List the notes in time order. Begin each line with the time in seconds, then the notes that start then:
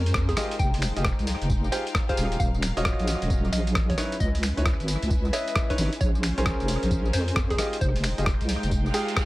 Already playing: F2 G#3 C#4 F4 G#4 A#4 C5 G#5
0.06 closed hi-hat, tambourine
0.14 kick, cross-stick, tambourine
0.29 G#4, kick, closed hi-hat, tambourine
0.37 D#4 F4 G4 G#4 D#5 G5, cross-stick, open hi-hat, tambourine
0.45 G#3
0.51 closed hi-hat, tambourine
0.59 F1 G5, kick, tambourine
0.65 F5
0.74 open hi-hat, tambourine
0.82 finger snap, open hi-hat, tambourine
0.96 F1 F4 G4 G#4 D#5, closed hi-hat, tambourine
1.04 kick, cross-stick, tambourine
1.19 C2, closed hi-hat, tambourine
1.27 G5, open hi-hat, tambourine
1.42 F1, closed hi-hat, tambourine
1.50 kick, tambourine
1.64 tambourine
1.72 F4 G4 G#4 C5 G5, finger snap, open hi-hat, tambourine
1.87 closed hi-hat, tambourine
1.95 kick, cross-stick, tambourine
2.09 F4 G4 G#4 C5 F5, kick, closed hi-hat, tambourine
2.17 D#1, open hi-hat, tambourine
2.32 closed hi-hat, tambourine
2.40 D#1 F#3 C#4 A#4 F5, kick, tambourine
2.47 F#3
2.54 tambourine
2.62 finger snap, open hi-hat, tambourine
2.77 D#1 F4 F#4 C#5 D#5, closed hi-hat, tambourine
2.85 kick, cross-stick, tambourine
2.99 A#1 D#5, closed hi-hat, tambourine
3.07 open hi-hat, tambourine
3.22 D#1, closed hi-hat, tambourine
3.30 kick, tambourine
3.45 tambourine
3.53 A#1 D#5, finger snap, open hi-hat, tambourine
3.67 closed hi-hat, tambourine
3.75 kick, cross-stick, tambourine
3.90 C#5, kick, closed hi-hat, tambourine
3.98 G#3 D#4 E4 B4 C#5, cross-stick, open hi-hat, tambourine
4.12 closed hi-hat, tambourine
4.20 C#2 D#5, kick, tambourine
4.35 B4, open hi-hat, tambourine
4.43 finger snap, open hi-hat, tambourine
4.57 C#2 D#4 E4 B4 C#5 E5, closed hi-hat, tambourine
4.65 kick, cross-stick, tambourine
4.80 G#1, closed hi-hat, tambourine
4.88 open hi-hat, tambourine
5.02 C#2, closed hi-hat, tambourine
5.10 kick, tambourine
5.25 tambourine
5.33 E4 B4 C#5 D#5 E5, finger snap, open hi-hat, tambourine
5.48 closed hi-hat, tambourine
5.55 kick, cross-stick, tambourine
5.70 D#4 E4 B4 C#5, kick, closed hi-hat, tambourine
5.78 G#1 D#4 E4 B4 C#5, open hi-hat, tambourine
5.93 closed hi-hat, tambourine
6.01 A#1 C#4 F4 C5 C#5, kick, tambourine
6.15 tambourine
6.23 finger snap, open hi-hat, tambourine
6.36 A#1 C#4 G#4 A#4 C5, closed hi-hat, tambourine
6.46 C5, kick, cross-stick, tambourine
6.60 F1, closed hi-hat, tambourine
6.68 open hi-hat, tambourine
6.73 G#5
6.83 A#1, closed hi-hat, tambourine
6.91 kick, tambourine
7.05 tambourine
7.13 F2 C5, finger snap, open hi-hat, tambourine
7.28 closed hi-hat, tambourine
7.36 kick, cross-stick, tambourine
7.50 G#4, kick, closed hi-hat, tambourine
7.58 D#4 F4 G4 G#4 D#5 G5, cross-stick, open hi-hat, tambourine
7.73 closed hi-hat, tambourine
7.78 F1 G#3 C5, kick, tambourine
7.96 open hi-hat, tambourine
8.04 G5, finger snap, open hi-hat, tambourine
8.11 F5
8.18 F1 F4 G4 G#4 D#5, closed hi-hat, tambourine
8.26 kick, cross-stick, tambourine
8.41 C2, closed hi-hat, tambourine
8.49 open hi-hat, tambourine
8.63 F1, closed hi-hat, tambourine
8.71 kick, tambourine, reverse cymbal
8.86 tambourine
8.94 F4 G4 G#4 G5, finger snap, open hi-hat, tambourine
9.08 closed hi-hat, tambourine
9.16 kick, cross-stick, tambourine